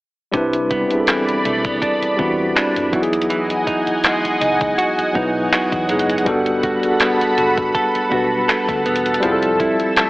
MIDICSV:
0, 0, Header, 1, 7, 480
1, 0, Start_track
1, 0, Tempo, 740741
1, 218, Time_signature, 4, 2, 24, 8
1, 6544, End_track
2, 0, Start_track
2, 0, Title_t, "Analog synth pad"
2, 0, Program_c, 0, 89
2, 221, Note_on_c, 0, 74, 88
2, 221, Note_on_c, 0, 83, 81
2, 1883, Note_off_c, 0, 74, 0
2, 1883, Note_off_c, 0, 83, 0
2, 1897, Note_on_c, 0, 75, 80
2, 1897, Note_on_c, 0, 78, 77
2, 1897, Note_on_c, 0, 80, 78
2, 4036, Note_off_c, 0, 75, 0
2, 4036, Note_off_c, 0, 80, 0
2, 4063, Note_on_c, 0, 81, 82
2, 4064, Note_on_c, 0, 69, 87
2, 4064, Note_on_c, 0, 83, 97
2, 5952, Note_off_c, 0, 78, 0
2, 5962, Note_off_c, 0, 83, 0
2, 5981, Note_on_c, 0, 88, 97
2, 5982, Note_on_c, 0, 76, 85
2, 6544, Note_off_c, 0, 69, 0
2, 6544, Note_off_c, 0, 76, 0
2, 6544, Note_off_c, 0, 81, 0
2, 6544, Note_off_c, 0, 88, 0
2, 6544, End_track
3, 0, Start_track
3, 0, Title_t, "Tine electric piano"
3, 0, Program_c, 1, 4
3, 204, Note_on_c, 1, 55, 117
3, 212, Note_on_c, 1, 60, 105
3, 220, Note_on_c, 1, 62, 111
3, 227, Note_on_c, 1, 64, 109
3, 237, Note_on_c, 1, 71, 123
3, 347, Control_c, 1, 64, 127
3, 481, Note_off_c, 1, 55, 0
3, 484, Note_off_c, 1, 60, 0
3, 489, Note_off_c, 1, 62, 0
3, 492, Note_off_c, 1, 64, 0
3, 497, Note_off_c, 1, 71, 0
3, 572, Note_on_c, 1, 55, 75
3, 580, Note_on_c, 1, 60, 73
3, 588, Note_on_c, 1, 62, 70
3, 597, Note_on_c, 1, 64, 73
3, 606, Note_on_c, 1, 68, 67
3, 636, Note_off_c, 1, 68, 0
3, 647, Note_on_c, 1, 69, 84
3, 1195, Note_off_c, 1, 55, 0
3, 1200, Note_off_c, 1, 60, 0
3, 1204, Note_off_c, 1, 62, 0
3, 1208, Note_off_c, 1, 64, 0
3, 1233, Note_off_c, 1, 69, 0
3, 1403, Note_on_c, 1, 55, 85
3, 1411, Note_on_c, 1, 60, 76
3, 1420, Note_on_c, 1, 62, 80
3, 1426, Note_on_c, 1, 64, 78
3, 1434, Note_on_c, 1, 66, 94
3, 1884, Note_on_c, 1, 54, 92
3, 1891, Note_off_c, 1, 55, 0
3, 1892, Note_on_c, 1, 59, 87
3, 1895, Note_off_c, 1, 60, 0
3, 1899, Note_off_c, 1, 62, 0
3, 1900, Note_off_c, 1, 64, 0
3, 1901, Note_on_c, 1, 63, 85
3, 1906, Note_off_c, 1, 66, 0
3, 1907, Control_c, 1, 64, 0
3, 1908, Note_on_c, 1, 64, 88
3, 1916, Note_on_c, 1, 66, 87
3, 1953, Note_off_c, 1, 66, 0
3, 1959, Note_on_c, 1, 68, 109
3, 2002, Control_c, 1, 64, 127
3, 2663, Note_off_c, 1, 54, 0
3, 2667, Note_off_c, 1, 59, 0
3, 2672, Note_off_c, 1, 63, 0
3, 2675, Note_off_c, 1, 64, 0
3, 2701, Note_off_c, 1, 68, 0
3, 3325, Note_on_c, 1, 54, 83
3, 3333, Note_on_c, 1, 59, 80
3, 3342, Note_on_c, 1, 63, 76
3, 3348, Note_on_c, 1, 64, 82
3, 3357, Note_on_c, 1, 71, 96
3, 3697, Note_off_c, 1, 54, 0
3, 3701, Note_off_c, 1, 59, 0
3, 3706, Note_off_c, 1, 63, 0
3, 3709, Note_off_c, 1, 64, 0
3, 3713, Note_off_c, 1, 71, 0
3, 3804, Note_on_c, 1, 54, 79
3, 3812, Note_on_c, 1, 59, 76
3, 3818, Note_on_c, 1, 63, 76
3, 3828, Note_on_c, 1, 64, 74
3, 3836, Note_on_c, 1, 68, 86
3, 3994, Note_off_c, 1, 54, 0
3, 3999, Note_off_c, 1, 59, 0
3, 4002, Note_off_c, 1, 63, 0
3, 4006, Note_off_c, 1, 64, 0
3, 4010, Note_off_c, 1, 68, 0
3, 4042, Note_on_c, 1, 55, 113
3, 4051, Note_on_c, 1, 59, 107
3, 4059, Note_on_c, 1, 62, 109
3, 4066, Note_on_c, 1, 66, 104
3, 4068, Control_c, 1, 64, 0
3, 4075, Note_on_c, 1, 69, 127
3, 4197, Control_c, 1, 64, 127
3, 4320, Note_off_c, 1, 55, 0
3, 4324, Note_off_c, 1, 59, 0
3, 4328, Note_off_c, 1, 62, 0
3, 4332, Note_off_c, 1, 66, 0
3, 4336, Note_off_c, 1, 69, 0
3, 4413, Note_on_c, 1, 55, 79
3, 4422, Note_on_c, 1, 59, 70
3, 4429, Note_on_c, 1, 62, 69
3, 4438, Note_on_c, 1, 66, 72
3, 4446, Note_on_c, 1, 68, 68
3, 4476, Note_off_c, 1, 68, 0
3, 4489, Note_on_c, 1, 69, 83
3, 5036, Note_off_c, 1, 55, 0
3, 5041, Note_off_c, 1, 59, 0
3, 5044, Note_off_c, 1, 62, 0
3, 5049, Note_off_c, 1, 66, 0
3, 5074, Note_off_c, 1, 69, 0
3, 5245, Note_on_c, 1, 55, 85
3, 5252, Note_on_c, 1, 59, 77
3, 5261, Note_on_c, 1, 62, 76
3, 5269, Note_on_c, 1, 66, 81
3, 5277, Note_on_c, 1, 71, 97
3, 5790, Note_off_c, 1, 55, 0
3, 5794, Note_off_c, 1, 59, 0
3, 5798, Note_off_c, 1, 62, 0
3, 5802, Note_off_c, 1, 66, 0
3, 5806, Note_off_c, 1, 71, 0
3, 5964, Note_on_c, 1, 55, 114
3, 5973, Note_on_c, 1, 60, 105
3, 5980, Note_on_c, 1, 64, 109
3, 5987, Control_c, 1, 64, 0
3, 5987, Note_on_c, 1, 65, 104
3, 5996, Note_on_c, 1, 68, 105
3, 6033, Note_off_c, 1, 68, 0
3, 6038, Note_on_c, 1, 69, 121
3, 6096, Control_c, 1, 64, 127
3, 6544, Note_off_c, 1, 55, 0
3, 6544, Note_off_c, 1, 60, 0
3, 6544, Note_off_c, 1, 64, 0
3, 6544, Note_off_c, 1, 65, 0
3, 6544, Note_off_c, 1, 69, 0
3, 6544, End_track
4, 0, Start_track
4, 0, Title_t, "Clean electric guitar"
4, 0, Program_c, 2, 27
4, 218, Note_on_c, 2, 48, 83
4, 461, Note_on_c, 2, 59, 68
4, 700, Note_on_c, 2, 52, 63
4, 937, Note_off_c, 2, 59, 0
4, 940, Note_on_c, 2, 57, 63
4, 1066, Note_off_c, 2, 57, 0
4, 1066, Note_on_c, 2, 59, 49
4, 1177, Note_on_c, 2, 62, 76
4, 1411, Note_off_c, 2, 59, 0
4, 1418, Note_on_c, 2, 59, 61
4, 1649, Note_off_c, 2, 62, 0
4, 1656, Note_on_c, 2, 62, 69
4, 1895, Note_off_c, 2, 52, 0
4, 1897, Note_on_c, 2, 52, 84
4, 1949, Note_off_c, 2, 62, 0
4, 1950, Note_off_c, 2, 48, 0
4, 2130, Note_off_c, 2, 52, 0
4, 2138, Note_on_c, 2, 52, 88
4, 2377, Note_on_c, 2, 63, 68
4, 2618, Note_off_c, 2, 59, 0
4, 2621, Note_on_c, 2, 56, 63
4, 2851, Note_off_c, 2, 63, 0
4, 2859, Note_on_c, 2, 63, 65
4, 3098, Note_on_c, 2, 66, 77
4, 3332, Note_off_c, 2, 63, 0
4, 3340, Note_on_c, 2, 63, 62
4, 3578, Note_off_c, 2, 66, 0
4, 3581, Note_on_c, 2, 66, 69
4, 3814, Note_off_c, 2, 56, 0
4, 3822, Note_on_c, 2, 56, 64
4, 4058, Note_off_c, 2, 52, 0
4, 4061, Note_on_c, 2, 55, 84
4, 4111, Note_off_c, 2, 63, 0
4, 4112, Note_off_c, 2, 56, 0
4, 4300, Note_off_c, 2, 66, 0
4, 4300, Note_on_c, 2, 66, 66
4, 4539, Note_on_c, 2, 59, 66
4, 4771, Note_off_c, 2, 66, 0
4, 4779, Note_on_c, 2, 66, 64
4, 5019, Note_on_c, 2, 69, 77
4, 5252, Note_off_c, 2, 66, 0
4, 5259, Note_on_c, 2, 66, 61
4, 5494, Note_off_c, 2, 69, 0
4, 5497, Note_on_c, 2, 69, 72
4, 5733, Note_off_c, 2, 59, 0
4, 5741, Note_on_c, 2, 59, 65
4, 5976, Note_off_c, 2, 55, 0
4, 5979, Note_on_c, 2, 53, 90
4, 6031, Note_off_c, 2, 59, 0
4, 6031, Note_off_c, 2, 66, 0
4, 6221, Note_on_c, 2, 64, 64
4, 6459, Note_on_c, 2, 57, 64
4, 6544, Note_off_c, 2, 53, 0
4, 6544, Note_off_c, 2, 57, 0
4, 6544, Note_off_c, 2, 64, 0
4, 6544, Note_off_c, 2, 69, 0
4, 6544, End_track
5, 0, Start_track
5, 0, Title_t, "Fingered electric bass"
5, 0, Program_c, 3, 33
5, 219, Note_on_c, 3, 36, 114
5, 538, Note_off_c, 3, 36, 0
5, 941, Note_on_c, 3, 35, 89
5, 1147, Note_off_c, 3, 35, 0
5, 1420, Note_on_c, 3, 40, 83
5, 1626, Note_off_c, 3, 40, 0
5, 1791, Note_on_c, 3, 43, 92
5, 1900, Note_off_c, 3, 43, 0
5, 1900, Note_on_c, 3, 40, 100
5, 2426, Note_off_c, 3, 40, 0
5, 2862, Note_on_c, 3, 37, 95
5, 3068, Note_off_c, 3, 37, 0
5, 3340, Note_on_c, 3, 35, 101
5, 3547, Note_off_c, 3, 35, 0
5, 3710, Note_on_c, 3, 40, 85
5, 3821, Note_on_c, 3, 30, 91
5, 3831, Note_off_c, 3, 40, 0
5, 4027, Note_off_c, 3, 30, 0
5, 4061, Note_on_c, 3, 31, 107
5, 4379, Note_off_c, 3, 31, 0
5, 4782, Note_on_c, 3, 30, 100
5, 4988, Note_off_c, 3, 30, 0
5, 5262, Note_on_c, 3, 35, 93
5, 5468, Note_off_c, 3, 35, 0
5, 5631, Note_on_c, 3, 38, 97
5, 5725, Note_off_c, 3, 38, 0
5, 5743, Note_on_c, 3, 28, 82
5, 5949, Note_off_c, 3, 28, 0
5, 5983, Note_on_c, 3, 29, 114
5, 6300, Note_off_c, 3, 29, 0
5, 6544, End_track
6, 0, Start_track
6, 0, Title_t, "Muted fingered electric bass strokes"
6, 591, Note_on_c, 9, 29, 52
6, 656, Note_off_c, 9, 29, 0
6, 831, Note_on_c, 9, 29, 47
6, 896, Note_off_c, 9, 29, 0
6, 1310, Note_on_c, 9, 29, 52
6, 1375, Note_off_c, 9, 29, 0
6, 2511, Note_on_c, 9, 29, 51
6, 2576, Note_off_c, 9, 29, 0
6, 2751, Note_on_c, 9, 29, 48
6, 2815, Note_off_c, 9, 29, 0
6, 3232, Note_on_c, 9, 29, 53
6, 3297, Note_off_c, 9, 29, 0
6, 4433, Note_on_c, 9, 29, 50
6, 4497, Note_off_c, 9, 29, 0
6, 4673, Note_on_c, 9, 29, 51
6, 4738, Note_off_c, 9, 29, 0
6, 5153, Note_on_c, 9, 29, 54
6, 5218, Note_off_c, 9, 29, 0
6, 6351, Note_on_c, 9, 29, 51
6, 6416, Note_off_c, 9, 29, 0
6, 6544, End_track
7, 0, Start_track
7, 0, Title_t, "Drums"
7, 218, Note_on_c, 9, 36, 110
7, 218, Note_on_c, 9, 42, 76
7, 282, Note_off_c, 9, 42, 0
7, 283, Note_off_c, 9, 36, 0
7, 346, Note_on_c, 9, 42, 53
7, 411, Note_off_c, 9, 42, 0
7, 458, Note_on_c, 9, 36, 91
7, 458, Note_on_c, 9, 42, 76
7, 523, Note_off_c, 9, 36, 0
7, 523, Note_off_c, 9, 42, 0
7, 587, Note_on_c, 9, 42, 46
7, 651, Note_off_c, 9, 42, 0
7, 694, Note_on_c, 9, 42, 85
7, 703, Note_on_c, 9, 39, 127
7, 759, Note_off_c, 9, 42, 0
7, 768, Note_off_c, 9, 39, 0
7, 833, Note_on_c, 9, 42, 49
7, 898, Note_off_c, 9, 42, 0
7, 942, Note_on_c, 9, 42, 71
7, 1006, Note_off_c, 9, 42, 0
7, 1067, Note_on_c, 9, 42, 46
7, 1068, Note_on_c, 9, 36, 103
7, 1132, Note_off_c, 9, 42, 0
7, 1133, Note_off_c, 9, 36, 0
7, 1179, Note_on_c, 9, 36, 99
7, 1182, Note_on_c, 9, 42, 80
7, 1244, Note_off_c, 9, 36, 0
7, 1247, Note_off_c, 9, 42, 0
7, 1312, Note_on_c, 9, 42, 50
7, 1377, Note_off_c, 9, 42, 0
7, 1419, Note_on_c, 9, 36, 89
7, 1484, Note_off_c, 9, 36, 0
7, 1662, Note_on_c, 9, 42, 75
7, 1666, Note_on_c, 9, 39, 106
7, 1727, Note_off_c, 9, 42, 0
7, 1731, Note_off_c, 9, 39, 0
7, 1791, Note_on_c, 9, 42, 58
7, 1856, Note_off_c, 9, 42, 0
7, 1899, Note_on_c, 9, 36, 109
7, 1899, Note_on_c, 9, 42, 61
7, 1964, Note_off_c, 9, 36, 0
7, 1964, Note_off_c, 9, 42, 0
7, 1964, Note_on_c, 9, 42, 57
7, 2029, Note_off_c, 9, 42, 0
7, 2029, Note_on_c, 9, 42, 55
7, 2084, Note_off_c, 9, 42, 0
7, 2084, Note_on_c, 9, 42, 56
7, 2140, Note_off_c, 9, 42, 0
7, 2140, Note_on_c, 9, 42, 77
7, 2205, Note_off_c, 9, 42, 0
7, 2269, Note_on_c, 9, 42, 55
7, 2333, Note_off_c, 9, 42, 0
7, 2379, Note_on_c, 9, 36, 90
7, 2381, Note_on_c, 9, 42, 76
7, 2444, Note_off_c, 9, 36, 0
7, 2445, Note_off_c, 9, 42, 0
7, 2509, Note_on_c, 9, 42, 46
7, 2573, Note_off_c, 9, 42, 0
7, 2616, Note_on_c, 9, 42, 79
7, 2625, Note_on_c, 9, 39, 120
7, 2681, Note_off_c, 9, 42, 0
7, 2690, Note_off_c, 9, 39, 0
7, 2754, Note_on_c, 9, 42, 51
7, 2819, Note_off_c, 9, 42, 0
7, 2861, Note_on_c, 9, 42, 76
7, 2926, Note_off_c, 9, 42, 0
7, 2987, Note_on_c, 9, 42, 48
7, 2988, Note_on_c, 9, 36, 96
7, 3051, Note_off_c, 9, 42, 0
7, 3053, Note_off_c, 9, 36, 0
7, 3102, Note_on_c, 9, 42, 76
7, 3166, Note_off_c, 9, 42, 0
7, 3232, Note_on_c, 9, 42, 52
7, 3297, Note_off_c, 9, 42, 0
7, 3339, Note_on_c, 9, 36, 87
7, 3404, Note_off_c, 9, 36, 0
7, 3581, Note_on_c, 9, 42, 74
7, 3585, Note_on_c, 9, 39, 105
7, 3646, Note_off_c, 9, 42, 0
7, 3650, Note_off_c, 9, 39, 0
7, 3709, Note_on_c, 9, 36, 105
7, 3710, Note_on_c, 9, 42, 57
7, 3773, Note_off_c, 9, 36, 0
7, 3775, Note_off_c, 9, 42, 0
7, 3817, Note_on_c, 9, 46, 75
7, 3819, Note_on_c, 9, 42, 60
7, 3881, Note_off_c, 9, 46, 0
7, 3884, Note_off_c, 9, 42, 0
7, 3884, Note_on_c, 9, 42, 61
7, 3949, Note_off_c, 9, 42, 0
7, 3950, Note_on_c, 9, 42, 56
7, 4005, Note_off_c, 9, 42, 0
7, 4005, Note_on_c, 9, 42, 58
7, 4058, Note_off_c, 9, 42, 0
7, 4058, Note_on_c, 9, 42, 79
7, 4059, Note_on_c, 9, 36, 114
7, 4123, Note_off_c, 9, 42, 0
7, 4124, Note_off_c, 9, 36, 0
7, 4187, Note_on_c, 9, 42, 54
7, 4252, Note_off_c, 9, 42, 0
7, 4298, Note_on_c, 9, 42, 77
7, 4299, Note_on_c, 9, 36, 91
7, 4363, Note_off_c, 9, 42, 0
7, 4364, Note_off_c, 9, 36, 0
7, 4427, Note_on_c, 9, 42, 50
7, 4492, Note_off_c, 9, 42, 0
7, 4534, Note_on_c, 9, 42, 83
7, 4543, Note_on_c, 9, 39, 127
7, 4599, Note_off_c, 9, 42, 0
7, 4608, Note_off_c, 9, 39, 0
7, 4674, Note_on_c, 9, 42, 50
7, 4739, Note_off_c, 9, 42, 0
7, 4781, Note_on_c, 9, 42, 70
7, 4846, Note_off_c, 9, 42, 0
7, 4909, Note_on_c, 9, 36, 99
7, 4909, Note_on_c, 9, 42, 48
7, 4974, Note_off_c, 9, 36, 0
7, 4974, Note_off_c, 9, 42, 0
7, 5020, Note_on_c, 9, 36, 99
7, 5022, Note_on_c, 9, 42, 77
7, 5085, Note_off_c, 9, 36, 0
7, 5087, Note_off_c, 9, 42, 0
7, 5152, Note_on_c, 9, 42, 51
7, 5217, Note_off_c, 9, 42, 0
7, 5260, Note_on_c, 9, 36, 85
7, 5324, Note_off_c, 9, 36, 0
7, 5502, Note_on_c, 9, 42, 73
7, 5506, Note_on_c, 9, 39, 103
7, 5567, Note_off_c, 9, 42, 0
7, 5571, Note_off_c, 9, 39, 0
7, 5629, Note_on_c, 9, 36, 104
7, 5632, Note_on_c, 9, 42, 56
7, 5694, Note_off_c, 9, 36, 0
7, 5697, Note_off_c, 9, 42, 0
7, 5740, Note_on_c, 9, 42, 59
7, 5804, Note_off_c, 9, 42, 0
7, 5804, Note_on_c, 9, 42, 62
7, 5869, Note_off_c, 9, 42, 0
7, 5869, Note_on_c, 9, 42, 54
7, 5924, Note_off_c, 9, 42, 0
7, 5924, Note_on_c, 9, 42, 54
7, 5979, Note_off_c, 9, 42, 0
7, 5979, Note_on_c, 9, 42, 76
7, 6044, Note_off_c, 9, 42, 0
7, 6108, Note_on_c, 9, 42, 55
7, 6173, Note_off_c, 9, 42, 0
7, 6219, Note_on_c, 9, 36, 91
7, 6221, Note_on_c, 9, 42, 75
7, 6284, Note_off_c, 9, 36, 0
7, 6285, Note_off_c, 9, 42, 0
7, 6348, Note_on_c, 9, 42, 47
7, 6413, Note_off_c, 9, 42, 0
7, 6457, Note_on_c, 9, 42, 78
7, 6466, Note_on_c, 9, 39, 125
7, 6522, Note_off_c, 9, 42, 0
7, 6531, Note_off_c, 9, 39, 0
7, 6544, End_track
0, 0, End_of_file